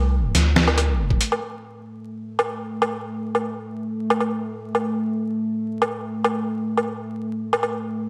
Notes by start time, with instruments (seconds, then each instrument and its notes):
Already playing: sub bass C2, analog synth pad A3
0.35 sub bass D2, snare, closed hi-hat
0.56 snare
0.68 low woodblock
0.78 closed hi-hat, low woodblock
1.10 kick
1.21 closed hi-hat
1.32 low woodblock
1.42 analog synth pad A3
2.39 low woodblock
2.82 low woodblock
3.35 low woodblock
4.10 low woodblock
4.21 low woodblock
4.75 low woodblock
5.82 low woodblock
6.24 low woodblock
6.77 low woodblock
7.53 low woodblock
7.63 low woodblock